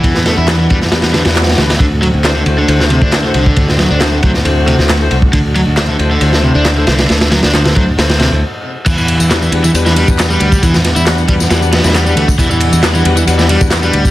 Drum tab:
CC |--------------------------------|--------------------------------|--------------------------------|--------------------------------|
RD |x---x---x---x---x-x-x-x-xxxxx-x-|x---x---x---x---x---x---x---x---|x---x---x---x---x---x---x---x---|x---x---x---x---x-------x---x-x-|
TB |--------------------------------|--------------------------------|--------------------------------|--------------------------------|
CP |--------x---------------x-------|--------x---------------x-------|--------x---------------x-------|--------x---------------x-------|
SD |--o-o---o-----o-o-o-o-o-ooooo-o-|--------o---------o-----o-------|--o-o---o-----o-------o-o-------|--------o---------o-----o---o-o-|
BD |o-----------o-------------------|o---------------------o-------o-|o-----------o-----------------o-|o-------------------------------|

CC |--------------------------------|x-------------------------------|--------------------------------|--------------------------------|
RD |x-x-x-x-x-x-x---x-x-x-----------|x---x---x---x---x---x---x---x---|x---x---x---x---x---xxxxx---x---|x---x---x---x---x---x---x---x---|
TB |--------------------------------|x-x---x-x-x---x-x-x---x-x-x---x-|x-x---x-x-x---x-x-x---x-x-x---x-|x-x---x-x-x---x-x-x---x-x-x---x-|
CP |--------x-----------------------|--------x---------------x-------|--------x---------------x-------|--------x---------------x-------|
SD |o-o-o-o-o-o-----o-o-o-----------|--------o---------o-----o-------|--o-o---o-----o-o---ooooo-------|--------o---------o-----o-------|
BD |------------o-------------------|o---------------------o-------o-|o-----------o-----------------o-|o---------------------o-------o-|